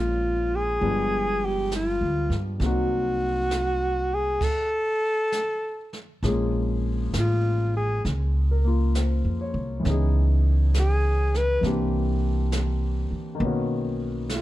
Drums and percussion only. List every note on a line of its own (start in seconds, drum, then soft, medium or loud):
0.82 brush sweep soft
1.71 snare soft
1.71 hi-hat pedal soft
2.31 snare soft
2.61 brush sweep soft
2.61 snare soft
3.51 snare soft
3.51 hi-hat pedal soft
4.41 brush sweep soft
4.41 kick medium
4.41 snare soft
4.41 crash medium
5.32 snare soft
5.32 hi-hat pedal soft
5.93 snare soft
6.23 brush sweep soft
6.23 snare soft
7.14 snare soft
7.14 hi-hat pedal medium
8.05 brush sweep soft
8.05 snare soft
8.95 snare soft
8.95 hi-hat pedal medium
9.86 brush sweep soft
9.86 snare soft
10.74 snare soft
10.74 hi-hat pedal medium
11.34 snare soft
11.64 brush sweep soft
11.64 snare soft
12.52 snare soft
12.52 hi-hat pedal medium
13.40 brush sweep soft
14.30 snare soft
14.30 hi-hat pedal medium